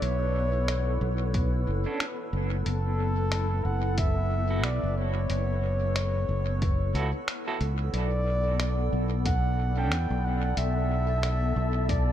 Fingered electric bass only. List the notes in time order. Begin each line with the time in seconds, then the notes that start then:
0.02 B1
1.01 B1
1.67 F#1
2.33 F#1
2.66 F#1
3.65 F#1
4.64 B1
4.83 F#1
5.30 F#1
6.29 F#1
6.94 C#2
7.61 C#2
7.93 B1
8.93 B1
9.91 E2
10.10 B1
10.57 B1
11.56 B1